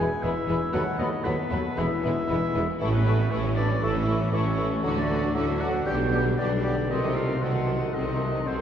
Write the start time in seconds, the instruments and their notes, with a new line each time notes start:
Already playing: harp E3 G#3 B3 B4 E5 G#5, french horn section G#4, oboe G#5
0.00 bassoon E3, clarinet G#4, harp G#4
0.12 harp B4
0.23 double bass section E1, tuba E1, cello section E2, viola section E3, bassoon E3, violin section G#3 B3, french horn section E4, clarinet G#4, oboe E5, harp E5, flute section B5
0.37 harp G#5
0.48 double bass section E1, tuba E1, cello section E2, viola section E3, bassoon E3, violin section G#3 B3, clarinet G#4, harp E5, flute section B5
0.62 harp B4
0.73 cello section D#2, double bass section D#2, tuba D#2, harp D#3, viola section F#3, bassoon F#3, violin section A3 B3, french horn section F#4, clarinet A4, oboe F#5, flute section B5
0.87 harp B3
0.98 double bass section D#2, cello section D#2, tuba D#2, viola section F#3, bassoon F#3, violin section A3 B3, french horn section D#4, clarinet A4, harp A4, oboe D#5, flute section B5
1.12 harp B4
1.24 tuba D#2, double bass section D#2, cello section D#2, bassoon F#3, viola section F#3, violin section A3 B3, clarinet A4, oboe B4, harp F#5, flute section B5
1.28 french horn section B3
1.39 harp A5
1.50 double bass section D#2, cello section D#2, tuba D#2, bassoon F#3, viola section F#3, violin section A3 B3, clarinet A4, harp F#5, flute section B5
1.66 harp B4
1.77 tuba E1, double bass section E1, cello section E2, viola section E3, bassoon E3, harp E3, violin section G#3 B3, clarinet G#4, oboe E5, flute section B5
1.81 french horn section E4
1.93 harp B3
2.04 tuba E1, double bass section E1, cello section E2, viola section E3, bassoon E3, violin section G#3 B3, clarinet G#4, harp G#4, flute section B5
2.19 harp B4
2.29 tuba E1, double bass section E1, cello section E2, viola section E3, bassoon E3, violin section G#3 B3, clarinet G#4, harp E5, flute section B5
2.45 harp G#5
2.54 tuba E1, double bass section E1, cello section E2, bassoon E3, viola section E3, violin section G#3 B3, clarinet G#4, harp E5, flute section B5
2.69 harp B4
2.79 double bass section A1, tuba A1, harp A2, cello section A2, bassoon E3, violin section A3 E4, viola section A3, clarinet A4, flute section C#6
2.92 viola section E3, harp A3, french horn section B3, violin section C#4, oboe B4
3.05 bassoon E3, violin section A3 E4, viola section A3, harp E4, clarinet A4, flute section C#6
3.18 viola section E3, violin section C#4, harp A4
3.30 double bass section A1, tuba A1, cello section A2, bassoon E3, violin section A3 E4, viola section A3, french horn section C#4, clarinet A4, oboe C#5, harp C#5, flute section C#6
3.43 viola section E3, violin section C#4, harp E5
3.55 bassoon E3, violin section A3 E4, viola section A3, french horn section D4, clarinet A4, harp C#5, oboe D5, flute section C#6
3.68 viola section E3, violin section C#4, harp A4
3.81 tuba A1, double bass section A1, cello section A2, harp E3, bassoon E3, violin section A3 E4, viola section A3, french horn section E4, clarinet A4, oboe E5, flute section C#6
3.94 viola section E3, harp A3, violin section C#4
4.07 bassoon E3, violin section A3 E4, viola section A3, harp E4, clarinet A4, flute section C#6
4.19 viola section E3, violin section C#4, harp A4
4.32 tuba A1, double bass section A1, cello section A2, bassoon E3, violin section A3 E4, viola section A3, french horn section C#4, clarinet A4, harp C#5, oboe C#5, flute section C#6
4.45 viola section E3, violin section C#4, harp E5
4.58 bassoon E3, violin section A3 E4, viola section A3, clarinet A4, harp C#5, flute section C#6
4.70 viola section E3, violin section C#4, harp A4
4.83 tuba D2, double bass section D2, harp D3, cello section D3, bassoon F#3, violin section A3 F#4, viola section A3, clarinet A4, flute section D6
4.95 viola section F#3, violin section D4, french horn section D4, harp D4, oboe D5
5.08 bassoon F#3, violin section A3 F#4, viola section A3, clarinet A4, harp A4, flute section D6
5.22 viola section F#3, violin section D4, harp D5
5.33 tuba D2, double bass section D2, cello section D3, bassoon F#3, violin section A3 F#4, viola section A3, french horn section E4, clarinet A4, oboe E5, harp F#5, flute section D6
5.47 viola section F#3, violin section D4, harp A5
5.60 bassoon F#3, violin section A3 F#4, viola section A3, french horn section F#4, clarinet A4, oboe F#5, harp F#5, flute section D6
5.73 viola section F#3, violin section D4, harp D5
5.84 tuba B1, double bass section B1, harp B2, cello section B2, viola section D3, bassoon G3, violin section B3 G4, french horn section G4, clarinet G4, oboe G5, flute section D6
5.98 viola section G3, harp B3, violin section D4
6.12 viola section D3, bassoon G3, violin section B3 G4, harp G4, clarinet G4, flute section D6
6.24 viola section G3, violin section D4, harp B4
6.38 tuba B1, double bass section B1, cello section B2, viola section D3, bassoon G3, violin section B3 G4, french horn section D4, clarinet G4, harp D5, oboe D5, flute section D6
6.50 viola section G3, violin section D4, harp G5
6.63 viola section D3, bassoon G3, violin section B3 G4, clarinet G4, harp D5, flute section D6
6.76 viola section G3, violin section D4, harp B4
6.89 tuba C2, double bass section C2, harp C3, cello section C3, bassoon D#3, viola section F#3, violin section A3 C4, french horn section D#4, clarinet A4, oboe D#5, flute section C6
7.02 viola section D#3, violin section C4 D#4, harp D#4
7.15 viola section F#3, violin section A3 C4, french horn section F4, harp A4, oboe F5
7.27 viola section D#3, violin section C4 D#4, harp D#5
7.39 double bass section C2, tuba C2, cello section C3, bassoon D#3, viola section F#3, violin section A3 C4, french horn section F#4, clarinet A4, harp F#5, oboe F#5, flute section C6
7.53 viola section D#3, violin section C4 D#4, harp A5
7.65 viola section F#3, violin section A3 C4, harp F#5
7.80 viola section D#3, violin section C4 D#4, harp D#5
7.93 double bass section C2, tuba C2, cello section C3, bassoon D#3, viola section F#3, violin section A3 C4, harp C4, french horn section D#4, clarinet A4, oboe D#5, flute section C6
8.07 viola section D#3, violin section C4 D#4, harp D#4
8.18 viola section F#3, violin section A3 C4, harp A4
8.31 viola section D#3, violin section C4 D#4, harp D#5
8.44 tuba C2, double bass section C2, cello section C3, bassoon D#3, viola section F#3, violin section A3, french horn section C4, clarinet A4, oboe C5, harp F#5, flute section C6
8.48 violin section C4
8.58 violin section C4